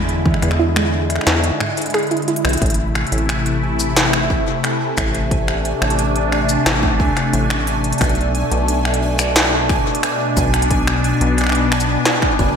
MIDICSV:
0, 0, Header, 1, 6, 480
1, 0, Start_track
1, 0, Tempo, 674157
1, 1863, Time_signature, 4, 2, 24, 8
1, 8943, End_track
2, 0, Start_track
2, 0, Title_t, "Synth texture"
2, 0, Program_c, 0, 99
2, 1863, Note_on_c, 0, 80, 89
2, 8943, Note_off_c, 0, 80, 0
2, 8943, End_track
3, 0, Start_track
3, 0, Title_t, "Synth arpeggio sound"
3, 0, Program_c, 1, 84
3, 183, Note_on_c, 1, 52, 78
3, 228, Note_off_c, 1, 52, 0
3, 423, Note_on_c, 1, 64, 98
3, 468, Note_off_c, 1, 64, 0
3, 543, Note_on_c, 1, 56, 79
3, 619, Note_off_c, 1, 56, 0
3, 1143, Note_on_c, 1, 44, 75
3, 1219, Note_off_c, 1, 44, 0
3, 1383, Note_on_c, 1, 68, 103
3, 1428, Note_off_c, 1, 68, 0
3, 1503, Note_on_c, 1, 64, 74
3, 1548, Note_off_c, 1, 64, 0
3, 1623, Note_on_c, 1, 64, 75
3, 1669, Note_off_c, 1, 64, 0
3, 8943, End_track
4, 0, Start_track
4, 0, Title_t, "Analog synth pad"
4, 0, Program_c, 2, 89
4, 0, Note_on_c, 2, 50, 80
4, 0, Note_on_c, 2, 56, 72
4, 0, Note_on_c, 2, 64, 87
4, 1834, Note_off_c, 2, 50, 0
4, 1834, Note_off_c, 2, 56, 0
4, 1834, Note_off_c, 2, 64, 0
4, 1862, Note_on_c, 2, 48, 82
4, 1862, Note_on_c, 2, 57, 75
4, 1862, Note_on_c, 2, 64, 88
4, 3763, Note_off_c, 2, 64, 0
4, 3782, Note_on_c, 2, 62, 90
4, 5674, Note_off_c, 2, 48, 0
4, 5683, Note_off_c, 2, 62, 0
4, 5702, Note_on_c, 2, 47, 83
4, 5702, Note_on_c, 2, 62, 89
4, 7594, Note_off_c, 2, 57, 0
4, 7622, Note_on_c, 2, 59, 74
4, 8943, Note_off_c, 2, 47, 0
4, 8943, Note_off_c, 2, 59, 0
4, 8943, Note_off_c, 2, 62, 0
4, 8943, End_track
5, 0, Start_track
5, 0, Title_t, "Acid bass"
5, 0, Program_c, 3, 38
5, 0, Note_on_c, 3, 40, 77
5, 253, Note_off_c, 3, 40, 0
5, 303, Note_on_c, 3, 40, 90
5, 853, Note_off_c, 3, 40, 0
5, 903, Note_on_c, 3, 40, 97
5, 1081, Note_off_c, 3, 40, 0
5, 1743, Note_on_c, 3, 35, 91
5, 1832, Note_off_c, 3, 35, 0
5, 1863, Note_on_c, 3, 33, 97
5, 2173, Note_off_c, 3, 33, 0
5, 2222, Note_on_c, 3, 33, 92
5, 3133, Note_off_c, 3, 33, 0
5, 3543, Note_on_c, 3, 33, 81
5, 4093, Note_off_c, 3, 33, 0
5, 4142, Note_on_c, 3, 33, 91
5, 4693, Note_off_c, 3, 33, 0
5, 4742, Note_on_c, 3, 33, 98
5, 4983, Note_on_c, 3, 38, 99
5, 4993, Note_off_c, 3, 33, 0
5, 5072, Note_off_c, 3, 38, 0
5, 5222, Note_on_c, 3, 33, 103
5, 5653, Note_off_c, 3, 33, 0
5, 5703, Note_on_c, 3, 35, 96
5, 6013, Note_off_c, 3, 35, 0
5, 6063, Note_on_c, 3, 35, 90
5, 6973, Note_off_c, 3, 35, 0
5, 7383, Note_on_c, 3, 35, 78
5, 7933, Note_off_c, 3, 35, 0
5, 7982, Note_on_c, 3, 35, 89
5, 8533, Note_off_c, 3, 35, 0
5, 8823, Note_on_c, 3, 30, 100
5, 8943, Note_off_c, 3, 30, 0
5, 8943, End_track
6, 0, Start_track
6, 0, Title_t, "Drums"
6, 62, Note_on_c, 9, 42, 36
6, 134, Note_off_c, 9, 42, 0
6, 182, Note_on_c, 9, 26, 25
6, 182, Note_on_c, 9, 36, 114
6, 242, Note_off_c, 9, 26, 0
6, 242, Note_on_c, 9, 26, 32
6, 254, Note_off_c, 9, 36, 0
6, 302, Note_off_c, 9, 26, 0
6, 302, Note_on_c, 9, 26, 36
6, 302, Note_on_c, 9, 42, 63
6, 362, Note_off_c, 9, 26, 0
6, 362, Note_on_c, 9, 26, 43
6, 373, Note_off_c, 9, 42, 0
6, 434, Note_off_c, 9, 26, 0
6, 543, Note_on_c, 9, 26, 81
6, 614, Note_off_c, 9, 26, 0
6, 783, Note_on_c, 9, 26, 24
6, 783, Note_on_c, 9, 42, 67
6, 823, Note_off_c, 9, 26, 0
6, 823, Note_on_c, 9, 26, 34
6, 854, Note_off_c, 9, 42, 0
6, 863, Note_off_c, 9, 26, 0
6, 863, Note_on_c, 9, 26, 44
6, 902, Note_on_c, 9, 38, 114
6, 934, Note_off_c, 9, 26, 0
6, 974, Note_off_c, 9, 38, 0
6, 1023, Note_on_c, 9, 42, 52
6, 1094, Note_off_c, 9, 42, 0
6, 1143, Note_on_c, 9, 26, 78
6, 1214, Note_off_c, 9, 26, 0
6, 1262, Note_on_c, 9, 42, 59
6, 1293, Note_off_c, 9, 42, 0
6, 1293, Note_on_c, 9, 42, 49
6, 1323, Note_off_c, 9, 42, 0
6, 1323, Note_on_c, 9, 42, 40
6, 1353, Note_off_c, 9, 42, 0
6, 1353, Note_on_c, 9, 42, 33
6, 1383, Note_off_c, 9, 42, 0
6, 1383, Note_on_c, 9, 26, 54
6, 1383, Note_on_c, 9, 42, 28
6, 1413, Note_off_c, 9, 42, 0
6, 1413, Note_on_c, 9, 42, 23
6, 1443, Note_off_c, 9, 42, 0
6, 1443, Note_on_c, 9, 42, 19
6, 1454, Note_off_c, 9, 26, 0
6, 1473, Note_off_c, 9, 42, 0
6, 1473, Note_on_c, 9, 42, 15
6, 1503, Note_off_c, 9, 42, 0
6, 1503, Note_on_c, 9, 42, 34
6, 1543, Note_off_c, 9, 42, 0
6, 1543, Note_on_c, 9, 42, 28
6, 1583, Note_off_c, 9, 42, 0
6, 1583, Note_on_c, 9, 42, 24
6, 1622, Note_off_c, 9, 42, 0
6, 1622, Note_on_c, 9, 42, 55
6, 1683, Note_off_c, 9, 42, 0
6, 1683, Note_on_c, 9, 42, 63
6, 1742, Note_off_c, 9, 42, 0
6, 1742, Note_on_c, 9, 26, 77
6, 1742, Note_on_c, 9, 42, 33
6, 1773, Note_off_c, 9, 42, 0
6, 1773, Note_on_c, 9, 42, 37
6, 1803, Note_off_c, 9, 42, 0
6, 1803, Note_on_c, 9, 42, 82
6, 1814, Note_off_c, 9, 26, 0
6, 1833, Note_off_c, 9, 42, 0
6, 1833, Note_on_c, 9, 42, 46
6, 1863, Note_off_c, 9, 42, 0
6, 1863, Note_on_c, 9, 36, 103
6, 1863, Note_on_c, 9, 42, 66
6, 1893, Note_off_c, 9, 42, 0
6, 1893, Note_on_c, 9, 42, 54
6, 1923, Note_off_c, 9, 42, 0
6, 1923, Note_on_c, 9, 42, 60
6, 1934, Note_off_c, 9, 36, 0
6, 1953, Note_off_c, 9, 42, 0
6, 1953, Note_on_c, 9, 42, 64
6, 2024, Note_off_c, 9, 42, 0
6, 2103, Note_on_c, 9, 26, 55
6, 2103, Note_on_c, 9, 42, 17
6, 2174, Note_off_c, 9, 26, 0
6, 2174, Note_off_c, 9, 42, 0
6, 2183, Note_on_c, 9, 42, 24
6, 2223, Note_off_c, 9, 42, 0
6, 2223, Note_on_c, 9, 42, 53
6, 2263, Note_off_c, 9, 42, 0
6, 2263, Note_on_c, 9, 42, 30
6, 2335, Note_off_c, 9, 42, 0
6, 2343, Note_on_c, 9, 26, 80
6, 2343, Note_on_c, 9, 42, 67
6, 2414, Note_off_c, 9, 26, 0
6, 2414, Note_off_c, 9, 42, 0
6, 2463, Note_on_c, 9, 42, 38
6, 2534, Note_off_c, 9, 42, 0
6, 2704, Note_on_c, 9, 42, 54
6, 2704, Note_on_c, 9, 82, 76
6, 2775, Note_off_c, 9, 42, 0
6, 2775, Note_off_c, 9, 82, 0
6, 2823, Note_on_c, 9, 38, 116
6, 2823, Note_on_c, 9, 42, 71
6, 2894, Note_off_c, 9, 38, 0
6, 2894, Note_off_c, 9, 42, 0
6, 2943, Note_on_c, 9, 26, 78
6, 3014, Note_off_c, 9, 26, 0
6, 3063, Note_on_c, 9, 36, 104
6, 3134, Note_off_c, 9, 36, 0
6, 3303, Note_on_c, 9, 26, 55
6, 3303, Note_on_c, 9, 42, 67
6, 3374, Note_off_c, 9, 26, 0
6, 3374, Note_off_c, 9, 42, 0
6, 3543, Note_on_c, 9, 26, 81
6, 3543, Note_on_c, 9, 36, 104
6, 3543, Note_on_c, 9, 42, 54
6, 3543, Note_on_c, 9, 82, 63
6, 3614, Note_off_c, 9, 36, 0
6, 3615, Note_off_c, 9, 26, 0
6, 3615, Note_off_c, 9, 42, 0
6, 3615, Note_off_c, 9, 82, 0
6, 3663, Note_on_c, 9, 42, 51
6, 3734, Note_off_c, 9, 42, 0
6, 3783, Note_on_c, 9, 36, 108
6, 3783, Note_on_c, 9, 42, 66
6, 3854, Note_off_c, 9, 36, 0
6, 3855, Note_off_c, 9, 42, 0
6, 3903, Note_on_c, 9, 26, 55
6, 3974, Note_off_c, 9, 26, 0
6, 4023, Note_on_c, 9, 42, 40
6, 4095, Note_off_c, 9, 42, 0
6, 4143, Note_on_c, 9, 26, 75
6, 4203, Note_on_c, 9, 42, 54
6, 4214, Note_off_c, 9, 26, 0
6, 4263, Note_off_c, 9, 42, 0
6, 4263, Note_on_c, 9, 42, 67
6, 4334, Note_off_c, 9, 42, 0
6, 4383, Note_on_c, 9, 42, 39
6, 4454, Note_off_c, 9, 42, 0
6, 4503, Note_on_c, 9, 26, 52
6, 4574, Note_off_c, 9, 26, 0
6, 4623, Note_on_c, 9, 42, 56
6, 4623, Note_on_c, 9, 82, 77
6, 4694, Note_off_c, 9, 42, 0
6, 4694, Note_off_c, 9, 82, 0
6, 4743, Note_on_c, 9, 26, 78
6, 4743, Note_on_c, 9, 38, 123
6, 4743, Note_on_c, 9, 42, 68
6, 4814, Note_off_c, 9, 26, 0
6, 4814, Note_off_c, 9, 38, 0
6, 4814, Note_off_c, 9, 42, 0
6, 4863, Note_on_c, 9, 36, 120
6, 4934, Note_off_c, 9, 36, 0
6, 4983, Note_on_c, 9, 36, 113
6, 5054, Note_off_c, 9, 36, 0
6, 5103, Note_on_c, 9, 26, 49
6, 5103, Note_on_c, 9, 42, 52
6, 5174, Note_off_c, 9, 26, 0
6, 5174, Note_off_c, 9, 42, 0
6, 5222, Note_on_c, 9, 42, 68
6, 5293, Note_off_c, 9, 42, 0
6, 5342, Note_on_c, 9, 26, 80
6, 5413, Note_off_c, 9, 26, 0
6, 5462, Note_on_c, 9, 42, 56
6, 5534, Note_off_c, 9, 42, 0
6, 5583, Note_on_c, 9, 42, 49
6, 5643, Note_off_c, 9, 42, 0
6, 5643, Note_on_c, 9, 42, 62
6, 5683, Note_off_c, 9, 42, 0
6, 5683, Note_on_c, 9, 42, 50
6, 5703, Note_off_c, 9, 42, 0
6, 5703, Note_on_c, 9, 26, 50
6, 5703, Note_on_c, 9, 36, 107
6, 5703, Note_on_c, 9, 42, 65
6, 5723, Note_off_c, 9, 42, 0
6, 5723, Note_on_c, 9, 42, 43
6, 5763, Note_off_c, 9, 42, 0
6, 5763, Note_on_c, 9, 42, 34
6, 5774, Note_off_c, 9, 26, 0
6, 5774, Note_off_c, 9, 36, 0
6, 5803, Note_off_c, 9, 42, 0
6, 5803, Note_on_c, 9, 42, 28
6, 5843, Note_off_c, 9, 42, 0
6, 5843, Note_on_c, 9, 42, 24
6, 5914, Note_off_c, 9, 42, 0
6, 5943, Note_on_c, 9, 42, 38
6, 6014, Note_off_c, 9, 42, 0
6, 6063, Note_on_c, 9, 42, 53
6, 6134, Note_off_c, 9, 42, 0
6, 6183, Note_on_c, 9, 42, 69
6, 6254, Note_off_c, 9, 42, 0
6, 6303, Note_on_c, 9, 26, 52
6, 6363, Note_on_c, 9, 42, 38
6, 6374, Note_off_c, 9, 26, 0
6, 6434, Note_off_c, 9, 42, 0
6, 6543, Note_on_c, 9, 26, 79
6, 6543, Note_on_c, 9, 42, 56
6, 6543, Note_on_c, 9, 82, 77
6, 6614, Note_off_c, 9, 26, 0
6, 6614, Note_off_c, 9, 42, 0
6, 6614, Note_off_c, 9, 82, 0
6, 6663, Note_on_c, 9, 38, 126
6, 6663, Note_on_c, 9, 42, 66
6, 6734, Note_off_c, 9, 38, 0
6, 6734, Note_off_c, 9, 42, 0
6, 6903, Note_on_c, 9, 26, 50
6, 6903, Note_on_c, 9, 36, 112
6, 6974, Note_off_c, 9, 26, 0
6, 6974, Note_off_c, 9, 36, 0
6, 7083, Note_on_c, 9, 42, 53
6, 7143, Note_off_c, 9, 42, 0
6, 7143, Note_on_c, 9, 26, 75
6, 7143, Note_on_c, 9, 42, 67
6, 7214, Note_off_c, 9, 26, 0
6, 7214, Note_off_c, 9, 42, 0
6, 7383, Note_on_c, 9, 36, 109
6, 7383, Note_on_c, 9, 42, 55
6, 7383, Note_on_c, 9, 82, 56
6, 7454, Note_off_c, 9, 36, 0
6, 7454, Note_off_c, 9, 42, 0
6, 7454, Note_off_c, 9, 82, 0
6, 7503, Note_on_c, 9, 26, 50
6, 7503, Note_on_c, 9, 42, 48
6, 7563, Note_off_c, 9, 42, 0
6, 7563, Note_on_c, 9, 42, 64
6, 7574, Note_off_c, 9, 26, 0
6, 7622, Note_off_c, 9, 42, 0
6, 7622, Note_on_c, 9, 42, 64
6, 7623, Note_on_c, 9, 36, 105
6, 7694, Note_off_c, 9, 36, 0
6, 7694, Note_off_c, 9, 42, 0
6, 7743, Note_on_c, 9, 26, 74
6, 7814, Note_off_c, 9, 26, 0
6, 7862, Note_on_c, 9, 42, 36
6, 7934, Note_off_c, 9, 42, 0
6, 7982, Note_on_c, 9, 42, 52
6, 8054, Note_off_c, 9, 42, 0
6, 8103, Note_on_c, 9, 26, 22
6, 8103, Note_on_c, 9, 42, 65
6, 8123, Note_off_c, 9, 26, 0
6, 8123, Note_on_c, 9, 26, 27
6, 8143, Note_off_c, 9, 26, 0
6, 8143, Note_on_c, 9, 26, 31
6, 8163, Note_off_c, 9, 26, 0
6, 8163, Note_on_c, 9, 26, 35
6, 8174, Note_off_c, 9, 42, 0
6, 8183, Note_off_c, 9, 26, 0
6, 8183, Note_on_c, 9, 26, 39
6, 8204, Note_off_c, 9, 26, 0
6, 8204, Note_on_c, 9, 26, 43
6, 8223, Note_on_c, 9, 42, 36
6, 8275, Note_off_c, 9, 26, 0
6, 8294, Note_off_c, 9, 42, 0
6, 8343, Note_on_c, 9, 26, 76
6, 8403, Note_on_c, 9, 42, 50
6, 8403, Note_on_c, 9, 82, 75
6, 8414, Note_off_c, 9, 26, 0
6, 8474, Note_off_c, 9, 42, 0
6, 8474, Note_off_c, 9, 82, 0
6, 8583, Note_on_c, 9, 38, 125
6, 8583, Note_on_c, 9, 42, 66
6, 8654, Note_off_c, 9, 38, 0
6, 8654, Note_off_c, 9, 42, 0
6, 8702, Note_on_c, 9, 26, 48
6, 8703, Note_on_c, 9, 36, 122
6, 8774, Note_off_c, 9, 26, 0
6, 8774, Note_off_c, 9, 36, 0
6, 8823, Note_on_c, 9, 36, 108
6, 8823, Note_on_c, 9, 42, 36
6, 8894, Note_off_c, 9, 36, 0
6, 8894, Note_off_c, 9, 42, 0
6, 8943, End_track
0, 0, End_of_file